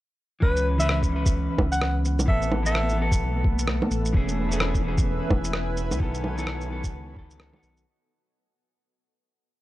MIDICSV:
0, 0, Header, 1, 7, 480
1, 0, Start_track
1, 0, Key_signature, 4, "minor"
1, 0, Tempo, 465116
1, 438, Time_signature, 4, 2, 24, 8
1, 9922, End_track
2, 0, Start_track
2, 0, Title_t, "Alto saxophone"
2, 0, Program_c, 0, 65
2, 440, Note_on_c, 0, 71, 86
2, 693, Note_off_c, 0, 71, 0
2, 821, Note_on_c, 0, 76, 82
2, 882, Note_off_c, 0, 76, 0
2, 926, Note_on_c, 0, 76, 72
2, 1014, Note_off_c, 0, 76, 0
2, 1773, Note_on_c, 0, 78, 88
2, 2027, Note_off_c, 0, 78, 0
2, 2356, Note_on_c, 0, 76, 86
2, 2611, Note_off_c, 0, 76, 0
2, 2746, Note_on_c, 0, 76, 86
2, 3080, Note_off_c, 0, 76, 0
2, 9922, End_track
3, 0, Start_track
3, 0, Title_t, "Ambient pad"
3, 0, Program_c, 1, 92
3, 2357, Note_on_c, 1, 57, 80
3, 2494, Note_on_c, 1, 69, 78
3, 3185, Note_on_c, 1, 71, 69
3, 3237, Note_on_c, 1, 76, 76
3, 4277, Note_off_c, 1, 57, 0
3, 4277, Note_on_c, 1, 64, 74
3, 4280, Note_off_c, 1, 69, 0
3, 4586, Note_on_c, 1, 80, 88
3, 5053, Note_off_c, 1, 76, 0
3, 5154, Note_on_c, 1, 73, 82
3, 6193, Note_on_c, 1, 59, 87
3, 6197, Note_off_c, 1, 64, 0
3, 6306, Note_on_c, 1, 66, 84
3, 6786, Note_on_c, 1, 69, 79
3, 6966, Note_on_c, 1, 75, 76
3, 6971, Note_off_c, 1, 71, 0
3, 6971, Note_off_c, 1, 80, 0
3, 6972, Note_off_c, 1, 73, 0
3, 8111, Note_off_c, 1, 69, 0
3, 8115, Note_off_c, 1, 59, 0
3, 8115, Note_off_c, 1, 66, 0
3, 8117, Note_off_c, 1, 75, 0
3, 9922, End_track
4, 0, Start_track
4, 0, Title_t, "Synth texture"
4, 0, Program_c, 2, 99
4, 447, Note_on_c, 2, 71, 84
4, 448, Note_on_c, 2, 59, 86
4, 8134, Note_off_c, 2, 59, 0
4, 8134, Note_off_c, 2, 71, 0
4, 9922, End_track
5, 0, Start_track
5, 0, Title_t, "Clean electric guitar"
5, 0, Program_c, 3, 27
5, 415, Note_on_c, 3, 52, 74
5, 436, Note_on_c, 3, 61, 70
5, 456, Note_on_c, 3, 71, 82
5, 776, Note_off_c, 3, 52, 0
5, 786, Note_off_c, 3, 61, 0
5, 796, Note_off_c, 3, 71, 0
5, 804, Note_on_c, 3, 52, 89
5, 825, Note_on_c, 3, 61, 81
5, 846, Note_on_c, 3, 71, 98
5, 1104, Note_off_c, 3, 52, 0
5, 1116, Note_on_c, 3, 52, 70
5, 1136, Note_off_c, 3, 61, 0
5, 1146, Note_off_c, 3, 71, 0
5, 1156, Note_on_c, 3, 61, 64
5, 1196, Note_on_c, 3, 71, 76
5, 2314, Note_off_c, 3, 52, 0
5, 2329, Note_on_c, 3, 52, 75
5, 2334, Note_off_c, 3, 61, 0
5, 2352, Note_on_c, 3, 59, 71
5, 2354, Note_off_c, 3, 71, 0
5, 2370, Note_on_c, 3, 69, 86
5, 2693, Note_off_c, 3, 52, 0
5, 2704, Note_off_c, 3, 59, 0
5, 2713, Note_off_c, 3, 69, 0
5, 2716, Note_on_c, 3, 52, 90
5, 2737, Note_on_c, 3, 59, 83
5, 2757, Note_on_c, 3, 69, 100
5, 3019, Note_off_c, 3, 52, 0
5, 3031, Note_on_c, 3, 52, 69
5, 3052, Note_off_c, 3, 59, 0
5, 3062, Note_off_c, 3, 69, 0
5, 3072, Note_on_c, 3, 59, 65
5, 3114, Note_on_c, 3, 69, 77
5, 4231, Note_off_c, 3, 52, 0
5, 4252, Note_off_c, 3, 59, 0
5, 4259, Note_on_c, 3, 52, 80
5, 4273, Note_off_c, 3, 69, 0
5, 4280, Note_on_c, 3, 61, 71
5, 4300, Note_on_c, 3, 68, 86
5, 4618, Note_off_c, 3, 52, 0
5, 4628, Note_off_c, 3, 61, 0
5, 4633, Note_on_c, 3, 52, 89
5, 4639, Note_off_c, 3, 68, 0
5, 4653, Note_on_c, 3, 61, 84
5, 4676, Note_on_c, 3, 68, 103
5, 4941, Note_off_c, 3, 52, 0
5, 4953, Note_on_c, 3, 52, 75
5, 4970, Note_off_c, 3, 61, 0
5, 4982, Note_off_c, 3, 68, 0
5, 4997, Note_on_c, 3, 61, 66
5, 5038, Note_on_c, 3, 68, 83
5, 6152, Note_off_c, 3, 52, 0
5, 6174, Note_off_c, 3, 61, 0
5, 6176, Note_on_c, 3, 51, 80
5, 6195, Note_off_c, 3, 68, 0
5, 6195, Note_on_c, 3, 59, 75
5, 6217, Note_on_c, 3, 69, 88
5, 6537, Note_off_c, 3, 51, 0
5, 6546, Note_off_c, 3, 59, 0
5, 6557, Note_off_c, 3, 69, 0
5, 6558, Note_on_c, 3, 51, 92
5, 6579, Note_on_c, 3, 59, 85
5, 6597, Note_on_c, 3, 69, 105
5, 6883, Note_off_c, 3, 51, 0
5, 6893, Note_off_c, 3, 59, 0
5, 6898, Note_on_c, 3, 51, 72
5, 6902, Note_off_c, 3, 69, 0
5, 6918, Note_on_c, 3, 59, 68
5, 6939, Note_on_c, 3, 69, 80
5, 7362, Note_off_c, 3, 51, 0
5, 7374, Note_on_c, 3, 51, 91
5, 7379, Note_off_c, 3, 59, 0
5, 7389, Note_off_c, 3, 69, 0
5, 7394, Note_on_c, 3, 59, 82
5, 7415, Note_on_c, 3, 69, 98
5, 7603, Note_off_c, 3, 51, 0
5, 7613, Note_off_c, 3, 59, 0
5, 7615, Note_on_c, 3, 51, 69
5, 7623, Note_off_c, 3, 69, 0
5, 7634, Note_on_c, 3, 59, 62
5, 7657, Note_on_c, 3, 69, 79
5, 7736, Note_off_c, 3, 51, 0
5, 7746, Note_off_c, 3, 59, 0
5, 7757, Note_off_c, 3, 69, 0
5, 7762, Note_on_c, 3, 51, 92
5, 7783, Note_on_c, 3, 59, 86
5, 7803, Note_on_c, 3, 69, 103
5, 8084, Note_off_c, 3, 51, 0
5, 8095, Note_off_c, 3, 59, 0
5, 8105, Note_off_c, 3, 69, 0
5, 9922, End_track
6, 0, Start_track
6, 0, Title_t, "Detuned saw bass"
6, 0, Program_c, 4, 39
6, 440, Note_on_c, 4, 37, 94
6, 1525, Note_off_c, 4, 37, 0
6, 1635, Note_on_c, 4, 37, 80
6, 2258, Note_on_c, 4, 35, 94
6, 2274, Note_off_c, 4, 37, 0
6, 2348, Note_off_c, 4, 35, 0
6, 2355, Note_on_c, 4, 33, 99
6, 3304, Note_off_c, 4, 33, 0
6, 3317, Note_on_c, 4, 35, 86
6, 3923, Note_off_c, 4, 35, 0
6, 4038, Note_on_c, 4, 33, 80
6, 4263, Note_off_c, 4, 33, 0
6, 4276, Note_on_c, 4, 28, 95
6, 5363, Note_off_c, 4, 28, 0
6, 5475, Note_on_c, 4, 28, 79
6, 6100, Note_on_c, 4, 37, 96
6, 6116, Note_off_c, 4, 28, 0
6, 6189, Note_off_c, 4, 37, 0
6, 6195, Note_on_c, 4, 35, 94
6, 7144, Note_off_c, 4, 35, 0
6, 7157, Note_on_c, 4, 37, 87
6, 7763, Note_off_c, 4, 37, 0
6, 7876, Note_on_c, 4, 35, 81
6, 8102, Note_off_c, 4, 35, 0
6, 9922, End_track
7, 0, Start_track
7, 0, Title_t, "Drums"
7, 436, Note_on_c, 9, 36, 108
7, 539, Note_off_c, 9, 36, 0
7, 583, Note_on_c, 9, 82, 31
7, 687, Note_off_c, 9, 82, 0
7, 824, Note_on_c, 9, 82, 53
7, 919, Note_on_c, 9, 37, 95
7, 927, Note_off_c, 9, 82, 0
7, 1023, Note_off_c, 9, 37, 0
7, 1060, Note_on_c, 9, 36, 58
7, 1064, Note_on_c, 9, 82, 32
7, 1163, Note_off_c, 9, 36, 0
7, 1168, Note_off_c, 9, 82, 0
7, 1299, Note_on_c, 9, 82, 54
7, 1300, Note_on_c, 9, 36, 100
7, 1403, Note_off_c, 9, 36, 0
7, 1403, Note_off_c, 9, 82, 0
7, 1634, Note_on_c, 9, 36, 97
7, 1635, Note_on_c, 9, 61, 49
7, 1737, Note_off_c, 9, 36, 0
7, 1738, Note_off_c, 9, 61, 0
7, 1776, Note_on_c, 9, 82, 57
7, 1873, Note_on_c, 9, 37, 98
7, 1880, Note_off_c, 9, 82, 0
7, 1976, Note_off_c, 9, 37, 0
7, 2115, Note_on_c, 9, 82, 44
7, 2218, Note_off_c, 9, 82, 0
7, 2262, Note_on_c, 9, 61, 35
7, 2262, Note_on_c, 9, 82, 55
7, 2353, Note_on_c, 9, 36, 113
7, 2365, Note_off_c, 9, 61, 0
7, 2365, Note_off_c, 9, 82, 0
7, 2456, Note_off_c, 9, 36, 0
7, 2498, Note_on_c, 9, 82, 31
7, 2596, Note_on_c, 9, 61, 34
7, 2601, Note_off_c, 9, 82, 0
7, 2699, Note_off_c, 9, 61, 0
7, 2743, Note_on_c, 9, 82, 55
7, 2838, Note_on_c, 9, 37, 99
7, 2847, Note_off_c, 9, 82, 0
7, 2941, Note_off_c, 9, 37, 0
7, 2983, Note_on_c, 9, 82, 31
7, 3087, Note_off_c, 9, 82, 0
7, 3217, Note_on_c, 9, 36, 103
7, 3220, Note_on_c, 9, 82, 56
7, 3320, Note_off_c, 9, 36, 0
7, 3323, Note_off_c, 9, 82, 0
7, 3554, Note_on_c, 9, 36, 99
7, 3658, Note_off_c, 9, 36, 0
7, 3701, Note_on_c, 9, 82, 56
7, 3793, Note_on_c, 9, 37, 105
7, 3804, Note_off_c, 9, 82, 0
7, 3896, Note_off_c, 9, 37, 0
7, 3942, Note_on_c, 9, 61, 51
7, 4036, Note_on_c, 9, 82, 44
7, 4046, Note_off_c, 9, 61, 0
7, 4139, Note_off_c, 9, 82, 0
7, 4183, Note_on_c, 9, 82, 53
7, 4275, Note_on_c, 9, 36, 114
7, 4286, Note_off_c, 9, 82, 0
7, 4378, Note_off_c, 9, 36, 0
7, 4422, Note_on_c, 9, 82, 32
7, 4525, Note_off_c, 9, 82, 0
7, 4661, Note_on_c, 9, 82, 54
7, 4750, Note_on_c, 9, 37, 104
7, 4764, Note_off_c, 9, 82, 0
7, 4853, Note_off_c, 9, 37, 0
7, 4898, Note_on_c, 9, 82, 31
7, 4899, Note_on_c, 9, 36, 61
7, 5001, Note_off_c, 9, 82, 0
7, 5002, Note_off_c, 9, 36, 0
7, 5137, Note_on_c, 9, 82, 55
7, 5139, Note_on_c, 9, 36, 109
7, 5240, Note_off_c, 9, 82, 0
7, 5242, Note_off_c, 9, 36, 0
7, 5474, Note_on_c, 9, 36, 102
7, 5475, Note_on_c, 9, 61, 50
7, 5577, Note_off_c, 9, 36, 0
7, 5578, Note_off_c, 9, 61, 0
7, 5617, Note_on_c, 9, 82, 55
7, 5711, Note_on_c, 9, 37, 107
7, 5721, Note_off_c, 9, 82, 0
7, 5814, Note_off_c, 9, 37, 0
7, 5954, Note_on_c, 9, 82, 44
7, 6058, Note_off_c, 9, 82, 0
7, 6102, Note_on_c, 9, 61, 34
7, 6102, Note_on_c, 9, 82, 54
7, 6193, Note_on_c, 9, 36, 116
7, 6205, Note_off_c, 9, 61, 0
7, 6205, Note_off_c, 9, 82, 0
7, 6296, Note_off_c, 9, 36, 0
7, 6340, Note_on_c, 9, 82, 30
7, 6439, Note_on_c, 9, 61, 33
7, 6444, Note_off_c, 9, 82, 0
7, 6542, Note_off_c, 9, 61, 0
7, 6584, Note_on_c, 9, 82, 52
7, 6676, Note_on_c, 9, 37, 103
7, 6687, Note_off_c, 9, 82, 0
7, 6779, Note_off_c, 9, 37, 0
7, 6820, Note_on_c, 9, 82, 30
7, 6923, Note_off_c, 9, 82, 0
7, 7057, Note_on_c, 9, 82, 52
7, 7058, Note_on_c, 9, 36, 106
7, 7160, Note_off_c, 9, 82, 0
7, 7161, Note_off_c, 9, 36, 0
7, 7394, Note_on_c, 9, 36, 105
7, 7497, Note_off_c, 9, 36, 0
7, 7539, Note_on_c, 9, 82, 53
7, 7634, Note_on_c, 9, 37, 109
7, 7642, Note_off_c, 9, 82, 0
7, 7737, Note_off_c, 9, 37, 0
7, 7776, Note_on_c, 9, 61, 48
7, 7873, Note_on_c, 9, 82, 44
7, 7879, Note_off_c, 9, 61, 0
7, 7976, Note_off_c, 9, 82, 0
7, 8018, Note_on_c, 9, 82, 52
7, 8122, Note_off_c, 9, 82, 0
7, 9922, End_track
0, 0, End_of_file